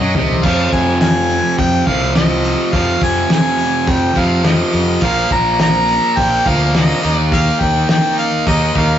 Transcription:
Already playing: D#5
0.00 F#2 F#3
0.14 C2 C3, floor tom
0.29 floor tom
0.43 F2 C3 F3 F5, kick, crash
0.72 F2 G#5, kick, open hi-hat
1.00 G#5, snare, open hi-hat
1.30 open hi-hat
1.58 F2 G5, kick, open hi-hat
1.87 C2 F2 C3 F3 F5, kick, open hi-hat
2.15 F2 C3 F3 D#5, snare, open hi-hat
2.44 open hi-hat
2.72 F2 C3 F3 F5, kick, open hi-hat
3.01 F2 G#5, kick, open hi-hat
3.30 G#5, snare, open hi-hat
3.59 open hi-hat
3.87 F2 G5, kick, open hi-hat
4.15 F2 C3 F3 F5, kick, open hi-hat
4.44 F2 C3 F3 D#5, snare, open hi-hat
4.73 F2, open hi-hat
5.01 A#1 A#2 F3 A#3 F5, kick, open hi-hat
5.31 A#1 A#5, kick, open hi-hat
5.59 A#5, snare, open hi-hat
5.88 open hi-hat
6.17 A#1 G5, kick, open hi-hat
6.46 D2 A#2 F3 A#3 F5, kick, open hi-hat
6.75 A#2 F3 A#3 D#5, snare, open hi-hat
7.02 D#2 D#3 A#3 D#4, open hi-hat
7.32 F5, kick, open hi-hat
7.60 D#2 G5, kick, open hi-hat
7.89 G5, snare, open hi-hat
8.18 F5, open hi-hat
8.47 D#2 D#3 A#3 D#4 D#5, kick, open hi-hat
8.75 D#2 D#3 A#3 D#4 F5, kick, open hi-hat

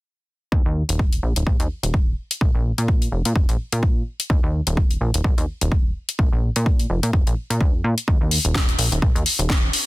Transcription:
0.52 D#2, kick
0.65 D#2
0.89 D#1, closed hi-hat
0.99 kick
1.13 closed hi-hat
1.23 A#1
1.36 D#1, closed hi-hat
1.47 A#1, kick
1.60 D#2, closed hi-hat
1.83 D#1, closed hi-hat
1.94 kick
2.31 closed hi-hat
2.41 A#1, kick
2.55 A#1
2.78 A#2, closed hi-hat
2.88 kick
3.02 closed hi-hat
3.12 F1
3.25 A#2, closed hi-hat
3.35 F1, kick
3.49 A#1, closed hi-hat
3.72 A#2, closed hi-hat
3.83 kick
4.20 closed hi-hat
4.30 D#2, kick
4.43 D#2
4.67 D#1, closed hi-hat
4.77 kick
4.91 closed hi-hat
5.01 A#1
5.14 D#1, closed hi-hat
5.24 A#1, kick
5.38 D#2, closed hi-hat
5.61 D#1, closed hi-hat
5.72 kick
6.09 closed hi-hat
6.19 A#1, kick
6.32 A#1
6.56 A#2, closed hi-hat
6.66 kick
6.79 closed hi-hat
6.90 F1
7.03 A#2, closed hi-hat
7.13 F1, kick
7.27 A#1, closed hi-hat
7.50 A#2, closed hi-hat
7.61 D2, kick
7.74 F2
7.84 A#2
7.98 closed hi-hat
8.08 D#2, kick
8.21 D#2
8.31 open hi-hat
8.45 D#1, closed hi-hat
8.55 kick, snare
8.69 closed hi-hat
8.78 A#1, open hi-hat
8.92 D#1, closed hi-hat
9.02 A#1, kick
9.15 D#2, closed hi-hat
9.26 open hi-hat
9.39 D#1, closed hi-hat
9.50 kick, snare
9.73 open hi-hat

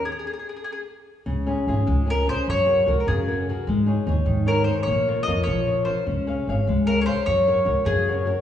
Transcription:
0.05 G#4
0.12 G#4
0.19 G#4
0.27 G#4
0.33 G#4
0.39 G#4
0.49 G#4
0.57 G#4
0.64 G#4
0.72 G#4
1.26 C#2 C#3
1.47 C#4 F4 G#4
1.67 G#1 C#4 F4 G#4
1.86 C#2 G#3
2.06 C#4 F4 G#4
2.10 A#4
2.26 C#4 F4 G#4 C5
2.47 F#2 F#3 C#5
2.66 F#4 G#4 A#4
2.86 C#2 F#4 G#4 A#4
3.00 A#4
3.07 F#2 C#3 G#4
3.28 F#4 G#4 A#4
3.49 F#4 G#4 A#4
3.67 G#2 G#3
3.86 D#4 G#4 C#5
4.07 D#2 D#4 G#4 C#5
4.26 G#2 D#3
4.46 D#4 G#4 A#4 C#5
4.64 D#4 G#4 C5 C#5
4.83 A#1 C#5
4.88 A#3
5.08 F4 A#4 C#5
5.23 D#5
5.27 F2 F4 A#4 C#5
5.44 A#1 F3 C#5
5.67 F4 A#4 C#5
5.85 F4 A#4 C5 C#5
6.07 C#2 C#4
6.27 G#4 C#5 F5
6.47 G#1 G#4 C#5 F5
6.67 C#2 G#3
6.85 G#4 A#4 C#5 F5
7.01 C#5
7.06 G#4 C5 C#5 F5
7.26 F#2 F#3 C#5
7.47 F#4 A#4 C#5
7.65 C#2 F#4 A#4 C#5
7.85 F#2 C#3 G#4
8.08 F#4 A#4 C#5
8.25 F#4 A#4 C#5

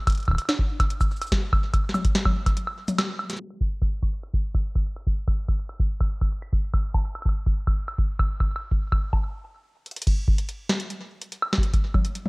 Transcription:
0.07 kick, closed hi-hat, high woodblock
0.09 closed hi-hat
0.12 closed hi-hat
0.15 closed hi-hat
0.17 closed hi-hat
0.20 closed hi-hat
0.22 closed hi-hat
0.25 kick, closed hi-hat, high woodblock
0.30 kick, high woodblock
0.33 kick, high woodblock
0.35 kick, closed hi-hat, high woodblock
0.42 high woodblock
0.45 snare, closed hi-hat, high woodblock
0.49 high woodblock
0.59 kick
0.80 kick, closed hi-hat, high woodblock
0.90 closed hi-hat
1.01 kick, cabasa, high woodblock
1.11 cabasa
1.16 cabasa
1.22 closed hi-hat, cabasa, high woodblock
1.27 cabasa
1.32 kick, snare, closed hi-hat
1.53 kick, high woodblock
1.74 kick, closed hi-hat, high woodblock
1.89 snare
1.94 high tom, cabasa, high woodblock
2.05 kick, closed hi-hat
2.15 snare, closed hi-hat
2.26 kick, high tom, high woodblock
2.46 kick, closed hi-hat, high woodblock
2.57 closed hi-hat
2.67 high woodblock
2.88 closed hi-hat, high tom, cabasa
2.98 snare, closed hi-hat, high woodblock
3.19 high woodblock
3.30 snare, closed hi-hat, cabasa
3.33 snare
3.37 snare, cabasa
3.44 cabasa
3.51 high woodblock
3.61 kick
3.82 kick, high woodblock
4.03 kick, high woodblock
4.24 high woodblock
4.34 kick
4.55 kick, high woodblock
4.75 kick, high woodblock
4.96 high woodblock
5.07 kick
5.28 kick, high woodblock
5.48 kick, high woodblock
5.69 high woodblock
5.80 kick
6.00 kick, high woodblock
6.21 kick, high woodblock
6.42 high woodblock
6.53 kick
6.73 kick, high woodblock
6.94 kick, high woodblock
7.15 high woodblock
7.22 kick, high woodblock
7.29 high woodblock
7.46 kick
7.67 kick, high woodblock
7.88 high woodblock
7.98 kick
8.19 kick, high woodblock
8.40 kick, high woodblock
8.56 high woodblock
8.71 kick
8.92 kick, high woodblock
9.13 kick, high woodblock
9.86 closed hi-hat
9.91 closed hi-hat
9.96 closed hi-hat
10.02 closed hi-hat
10.07 kick, closed hi-hat, crash
10.28 kick
10.38 closed hi-hat
10.48 closed hi-hat
10.69 snare
10.80 closed hi-hat
10.90 closed hi-hat
11.21 closed hi-hat
11.32 closed hi-hat
11.42 high woodblock
11.53 snare, high woodblock
11.58 kick
11.63 closed hi-hat
11.73 kick, closed hi-hat
11.94 kick, high tom, high woodblock
12.05 closed hi-hat
12.15 closed hi-hat
12.26 high tom

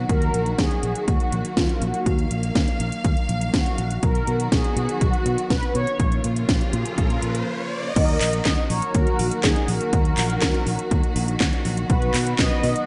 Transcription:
Already playing: D#3 F#3 F#4
0.09 D#2 A#3 A#4, kick, closed hi-hat
0.22 closed hi-hat
0.34 A#1, closed hi-hat
0.46 closed hi-hat
0.59 D#2 G#4, kick, snare, closed hi-hat
0.71 closed hi-hat
0.83 A#1, closed hi-hat
0.95 closed hi-hat
1.08 D#2 F#4, kick, closed hi-hat
1.20 closed hi-hat
1.32 A#1, closed hi-hat
1.45 closed hi-hat
1.57 D#2 F4, kick, snare, closed hi-hat
1.69 closed hi-hat
1.81 A#1 F#4, closed hi-hat
1.94 closed hi-hat
2.06 D#2 F5, kick, closed hi-hat
2.19 closed hi-hat
2.31 A#1, closed hi-hat
2.43 closed hi-hat
2.55 D#2, kick, snare, closed hi-hat
2.68 closed hi-hat
2.80 A#1, closed hi-hat
2.92 closed hi-hat
3.04 D#2, kick, closed hi-hat
3.17 closed hi-hat
3.29 A#1, closed hi-hat
3.41 closed hi-hat
3.54 D#2 F#4, kick, snare, closed hi-hat
3.66 closed hi-hat
3.78 A#1, closed hi-hat
3.91 closed hi-hat
4.03 B1 D#3 F#3 B3 F#4 A#4, kick, closed hi-hat, riser
4.15 closed hi-hat
4.27 B2, closed hi-hat
4.40 closed hi-hat
4.52 B1 G#4, kick, snare, closed hi-hat
4.64 closed hi-hat
4.76 B2, closed hi-hat
4.89 closed hi-hat
5.01 B1 F#4, kick, closed hi-hat
5.13 closed hi-hat
5.26 B2, closed hi-hat
5.38 closed hi-hat
5.50 B1 B4, kick, snare, closed hi-hat
5.63 closed hi-hat
5.75 B2 C#5, closed hi-hat
5.87 closed hi-hat
6.00 A#1 C#3 F3 A#3 F4, kick, closed hi-hat
6.12 closed hi-hat
6.24 A#2, closed hi-hat
6.36 closed hi-hat
6.49 A#1, kick, snare, closed hi-hat
6.61 closed hi-hat
6.73 A#2, closed hi-hat
6.86 closed hi-hat
6.98 A#1, kick, closed hi-hat
7.10 closed hi-hat
7.22 A#2, closed hi-hat
7.35 closed hi-hat
7.96 D#2 D#3 F#3 A#3 F#4 A#4 D#5, kick, closed hi-hat, crash
8.09 closed hi-hat
8.21 A#1, clap, open hi-hat
8.33 closed hi-hat
8.45 D#2, kick, snare, clap, closed hi-hat
8.70 A#1 A#4 C#5, open hi-hat
8.82 closed hi-hat
8.94 D#2 F#4 A#4, kick, closed hi-hat
9.07 closed hi-hat
9.19 A#1, open hi-hat
9.31 closed hi-hat
9.44 D#2 D#4 G#4, kick, snare, clap, closed hi-hat
9.56 closed hi-hat
9.68 A#1 F#4 A#4, open hi-hat
9.81 closed hi-hat
9.93 D#2, kick, closed hi-hat
10.05 closed hi-hat
10.17 A#1, clap, open hi-hat
10.30 closed hi-hat
10.42 D#2, kick, snare, clap, closed hi-hat
10.54 closed hi-hat
10.67 A#1, open hi-hat
10.79 closed hi-hat
10.91 D#2, kick, closed hi-hat
11.04 closed hi-hat
11.16 A#1, open hi-hat
11.28 closed hi-hat
11.40 D#2, kick, snare, clap, closed hi-hat
11.53 closed hi-hat
11.65 A#1, open hi-hat
11.77 closed hi-hat
11.90 B1 B3 F#4 B4, kick, closed hi-hat
12.02 closed hi-hat
12.14 B2, clap, open hi-hat
12.27 closed hi-hat
12.39 B1 B4 D#5, kick, snare, clap, closed hi-hat
12.63 B2, open hi-hat
12.76 closed hi-hat

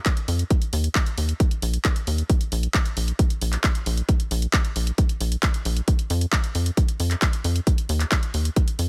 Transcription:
0.06 kick, clap, closed hi-hat
0.17 closed hi-hat
0.28 F2, open hi-hat
0.39 closed hi-hat
0.50 kick, closed hi-hat
0.62 closed hi-hat
0.73 D#2, open hi-hat
0.84 closed hi-hat
0.95 kick, clap, closed hi-hat
1.06 closed hi-hat
1.18 D#2, open hi-hat
1.29 closed hi-hat
1.40 kick, closed hi-hat
1.51 closed hi-hat
1.62 A#1, open hi-hat
1.74 closed hi-hat
1.85 kick, clap, closed hi-hat
1.96 closed hi-hat
2.07 D#2, open hi-hat
2.18 closed hi-hat
2.30 kick, closed hi-hat
2.41 closed hi-hat
2.52 A#1, open hi-hat
2.63 closed hi-hat
2.74 kick, clap, closed hi-hat
2.86 closed hi-hat
2.97 A#1, open hi-hat
3.08 closed hi-hat
3.19 kick, closed hi-hat
3.30 closed hi-hat
3.41 A#1, open hi-hat
3.53 clap, closed hi-hat
3.64 kick, clap, closed hi-hat
3.75 closed hi-hat
3.86 A#1, open hi-hat
3.97 closed hi-hat
4.09 kick, closed hi-hat
4.20 closed hi-hat
4.31 A#1, open hi-hat
4.42 closed hi-hat
4.53 kick, clap, closed hi-hat
4.65 closed hi-hat
4.76 A#1, open hi-hat
4.87 closed hi-hat
4.98 kick, closed hi-hat
5.09 closed hi-hat
5.21 A#1, open hi-hat
5.32 closed hi-hat
5.43 kick, clap, closed hi-hat
5.54 closed hi-hat
5.65 A#1, open hi-hat
5.77 closed hi-hat
5.88 kick, closed hi-hat
5.99 closed hi-hat
6.10 F2, open hi-hat
6.21 closed hi-hat
6.33 kick, clap, closed hi-hat
6.44 closed hi-hat
6.55 F2, open hi-hat
6.66 closed hi-hat
6.77 kick, closed hi-hat
6.88 closed hi-hat
7.00 F2, open hi-hat
7.11 clap, closed hi-hat
7.22 kick, clap, closed hi-hat
7.33 closed hi-hat
7.44 F2, open hi-hat
7.56 closed hi-hat
7.67 kick, closed hi-hat
7.78 closed hi-hat
7.89 D#2, open hi-hat
8.00 clap, closed hi-hat
8.12 kick, clap, closed hi-hat
8.23 closed hi-hat
8.34 D#2, open hi-hat
8.45 closed hi-hat
8.56 kick, closed hi-hat
8.68 closed hi-hat
8.79 F2, open hi-hat

